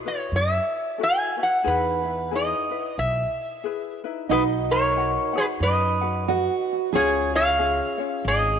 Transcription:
0.06 E4 F#4 B4 C#5
0.32 F#2 E5
0.98 E4 F#4 A4 B4
1.03 G#5
1.37 E4 F#4 B4
1.43 F#5
1.64 E2 D#4 E4 G#4 B4
2.03 D#4 E4 B4
2.31 D#4 E4 G#4 B4
2.36 D#5
2.71 E4 B4
2.98 B1 E5
3.64 E4 G#4 B4
4.04 D#4 E4 B4
4.29 B1 D#4 F#4 B4 D#5 F#5
4.71 A#4 C#5
4.96 F#4 D#5 F#5
5.33 F#4 B4 F#5
5.37 G#4 B4
5.60 F#2 B4 D#5
6.01 F#4 B4 F#5
6.28 F#4 B4 D#5 F#5
6.93 C#2 C#4 F4 G#4 C#5
7.35 C#5 F5
7.59 C#4 F4 G#4 C#5
7.98 C#4 F4 C#5
8.25 G#1 G#4 D#5

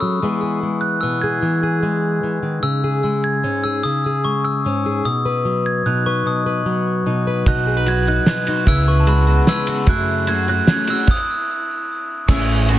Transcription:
Already playing: C#4 A4
0.00 F#3 E6
0.22 E3 G#3 B3 E4 G#4
0.43 G#4
0.63 G#3
0.81 F#6
1.01 B2 B3 E6
1.22 G#4 G#6
1.42 E3
1.63 G#4
1.83 G#3
2.23 E3
2.43 D#3
2.63 C#3 E6
2.84 G#4
3.04 G#3
3.24 G#6
3.43 G#2 C#4
3.64 G#4 E6
3.83 C#3 D#6
4.06 G#4
4.25 G#3 C#6
4.45 E6
4.65 G#2 C#4
4.86 G#4
5.05 B2 D#6
5.25 B4
5.45 F#3
5.66 G#6
5.86 B2 D#4 F#6
6.06 B4 C#6
6.26 B2 D#6
6.46 B4
6.66 F#3
7.06 B2 D#4
7.27 B4
7.46 B1 B2 D#4 F#4 B4 F#6, kick, ride
7.67 G#4
7.77 B4
7.86 F#3 F#4 G#6, ride
8.07 D#4 F#4 F#6
8.26 F#3 G#4 B4, snare, ride
8.46 D#4 F#4, ride
8.66 C#2 C#3 B3 E4 B4 E6, kick, ride
8.88 B4 C#6
9.00 A5
9.07 G#3 F#4 B5, ride
9.27 B3 F#4
9.47 G#3 G#4 B4 E6, snare, ride
9.67 B3 F#4, ride
9.87 F#2 C#3 F#3 A3 C#4 E4 G#4 F#6, kick, ride
10.27 F#3 A3 C#4 F#4 G#4 G#6, ride
10.47 F#3 A3 C#4 F#4 G#4 F#6
10.67 F#3 A3 C#4 G#4, snare, ride
10.87 F#3 A3 C#4 F#4 G#4 E6, ride
11.07 D#6, kick, crash
12.28 A1 A3 C#4 E4 G#4 G#5 C#6, kick, crash, tambourine
12.39 tambourine
12.69 A3 C#4 E4 F#4 G#4, ride

